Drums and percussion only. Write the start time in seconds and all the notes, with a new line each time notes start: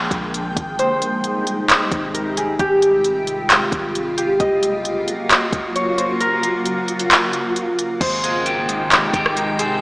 0.11 kick, closed hi-hat
0.34 closed hi-hat
0.57 kick, closed hi-hat
0.79 closed hi-hat
1.02 closed hi-hat
1.24 closed hi-hat
1.47 closed hi-hat
1.69 clap, closed hi-hat
1.92 kick, closed hi-hat
2.15 closed hi-hat
2.37 closed hi-hat
2.59 kick, closed hi-hat
2.82 closed hi-hat
3.04 closed hi-hat
3.27 closed hi-hat
3.50 clap, closed hi-hat
3.72 kick, closed hi-hat
3.95 closed hi-hat
4.18 closed hi-hat
4.40 kick, closed hi-hat
4.63 closed hi-hat
4.85 closed hi-hat
5.08 closed hi-hat
5.30 clap, closed hi-hat
5.53 kick, closed hi-hat
5.76 closed hi-hat
5.98 closed hi-hat
6.21 closed hi-hat
6.43 closed hi-hat
6.66 closed hi-hat
6.88 closed hi-hat
6.99 closed hi-hat
7.11 clap, closed hi-hat
7.33 closed hi-hat
7.56 closed hi-hat
7.79 closed hi-hat
8.01 kick, closed hi-hat, crash
8.24 closed hi-hat
8.46 closed hi-hat
8.69 closed hi-hat
8.91 clap, closed hi-hat
9.13 kick, closed hi-hat
9.26 cross-stick
9.37 closed hi-hat
9.59 closed hi-hat